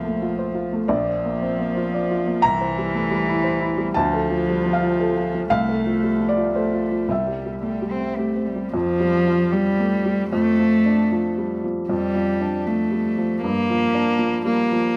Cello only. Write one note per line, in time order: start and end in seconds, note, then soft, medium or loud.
0.00 0.89 F3 medium
0.89 2.44 F3 medium
2.42 3.95 E3 medium
3.95 5.48 F3 medium
5.50 6.50 A3 medium
6.55 7.10 A3 medium
7.09 7.58 G3 medium
7.63 7.93 G3 medium
7.91 8.19 C4 medium
8.17 8.48 A3 medium
8.46 8.73 G3 medium
8.73 9.54 F3 loud
9.52 10.29 G3 medium
10.30 11.60 A3 loud
11.89 12.68 G3 medium
12.66 13.41 A3 medium
13.42 14.43 A#3 loud
14.46 14.97 A#3 medium